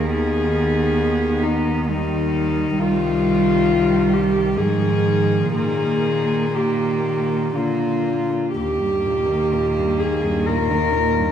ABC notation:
X:1
M:3/4
L:1/16
Q:1/4=64
K:Eb
V:1 name="Cello"
A6 E2 E4 | F6 G2 A4 | A4 G4 F4 | G6 A2 B4 |]
V:2 name="Cello"
_C8 G,4 | G,8 F,4 | B,4 B,4 B,4 | B,12 |]
V:3 name="Cello" clef=bass
E,8 E,4 | E,8 E,4 | E,4 E,4 D,3 z | E,, G,, B,, E, B,, G,, E,, G,, B,, E, B,, G,, |]
V:4 name="Cello" clef=bass
E,,12 | C,,8 A,,4 | B,,12 | E,,12 |]